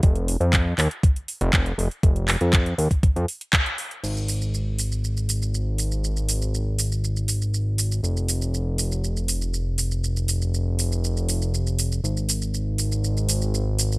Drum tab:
CC |----------------|----------------|x---------------|----------------|
HH |xxoxx-oxxxoxxxox|xxoxxxoxxxoxxxox|--o---o---o---o-|--o---o---o---o-|
SH |----------------|----------------|xxxxx-xxxxxxx-xx|xxxxx-xxxxxxx-xx|
CP |----x-x-----x---|--x-x-------x---|----------------|----------------|
BD |o---o---o---o---|o---o--oo---o---|----------------|----------------|

CC |----------------|----------------|----------------|
HH |--o---o---o---o-|--o---o---o---o-|--o---o---o---o-|
SH |xxxxx-xxxxxxx-xx|xxxxx-xxxxxxxxxx|xxxxx-xxxxxxx-xx|
CP |----------------|----------------|----------------|
BD |----------------|----------------|----------------|